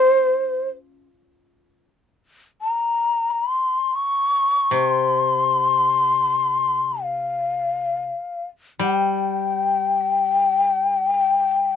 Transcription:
Already playing: koto A#3 C#4 F4, shakuhachi C5
2.61 shakuhachi A#5
3.31 shakuhachi A#5
3.50 shakuhachi C6
3.95 shakuhachi C#6
4.71 koto C3, shakuhachi C#6
4.87 shakuhachi C6
7.03 shakuhachi F5
8.79 koto G3, shakuhachi G5

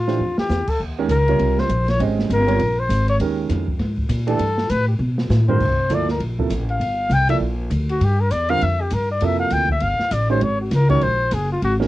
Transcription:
Already playing: upright bass A2, trumpet F4
0.07 grand piano E3 A3 D4 G4 C5, snare
0.19 upright bass F2
0.38 trumpet G4, muted upright bass stroke, snare
0.49 upright bass E2, snare, hi-hat pedal
0.67 trumpet A4, muted upright bass stroke, kick, crash
0.79 upright bass D#2
0.98 grand piano D#3 G#3 C#4 G4 A#4
1.09 upright bass C#2, trumpet A#4, hi-hat pedal, ride
1.28 grand piano C3 G3 F4 A#4 C#5, ride
1.39 upright bass C2, ride
1.58 trumpet C5, snare
1.69 upright bass A#1, hi-hat pedal, ride
1.88 trumpet C#5, snare, ride
2.00 upright bass G#1, grand piano G#3 C#4 G4 C5 D#5, ride
2.19 snare
2.30 upright bass G1, trumpet A#4, hi-hat pedal, ride
2.48 grand piano G3 C4 F4 A#4 C#5, ride
2.59 upright bass A#1, ride
2.79 trumpet C5
2.89 upright bass G#1, hi-hat pedal, ride
3.08 trumpet C#5, ride
3.20 upright bass D#2, grand piano D#3 G#3 C#4 G4 A#4, ride
3.49 upright bass F2, snare, hi-hat pedal, ride
3.68 kick
3.79 upright bass G#2, snare, ride
3.98 kick
4.09 upright bass A#2, hi-hat pedal, ride
4.27 grand piano E3 A3 D4 G4 D5, trumpet A4, ride
4.39 upright bass G2, ride
4.58 snare
4.70 upright bass A2, trumpet B4, hi-hat pedal, ride
4.88 trumpet G4
4.99 upright bass B2
5.18 snare
5.30 upright bass A2, snare, hi-hat pedal
5.48 grand piano D3 G3 C4 F4 A#4, trumpet C5, floor tom
5.60 upright bass C2, kick, crash
5.90 upright bass D2, grand piano F3 A#3 E4 A4 D5, hi-hat pedal, ride
5.94 trumpet D5
6.08 trumpet A#4, snare
6.20 upright bass A#1, ride
6.39 grand piano C3 F3 A#3 E4 A4, kick
6.50 upright bass A1, hi-hat pedal, ride
6.69 trumpet F5, ride
6.80 upright bass G1, ride
7.09 upright bass C2, trumpet G5, hi-hat pedal, ride
7.29 grand piano F3 A#3 E4 A4 D5, trumpet E5, ride
7.40 upright bass A#1
7.70 upright bass D2, hi-hat pedal, ride
7.89 trumpet F#4, ride
8.01 upright bass G2, trumpet G4, ride
8.20 trumpet A#4
8.31 upright bass E2, trumpet D5, hi-hat pedal, ride
8.49 grand piano D3 G3 C4 F4 A#4, trumpet F5, ride
8.61 upright bass F2, trumpet E5, ride
8.81 trumpet G4
8.90 upright bass G2, trumpet A#4, hi-hat pedal, ride
9.11 trumpet D5
9.21 upright bass F2, grand piano C3 F3 A#3 E4 A4, ride
9.25 trumpet E5
9.40 trumpet F5
9.50 upright bass D2, trumpet G5, hi-hat pedal, ride
9.69 trumpet E5, kick
9.80 upright bass G1, trumpet F5, ride
10.00 muted upright bass stroke, snare
10.11 upright bass A1, trumpet D5, hi-hat pedal, ride
10.30 grand piano D#3 G#3 C#4 F#4 C#5, trumpet C5
10.41 upright bass G#1, trumpet C#5, ride
10.61 trumpet F#4
10.71 upright bass C#2, trumpet A#4, snare, hi-hat pedal, ride
10.89 grand piano D#3 G#3 C#4 F#4 A#4, trumpet C#5, kick, ride
11.01 upright bass A#1, trumpet C5, ride
11.31 upright bass F#1, trumpet G#4, hi-hat pedal, ride
11.52 trumpet F4
11.62 upright bass G#1, trumpet F#4, ride
11.80 grand piano D#3 G#3 C#4 F#4 A#4, snare

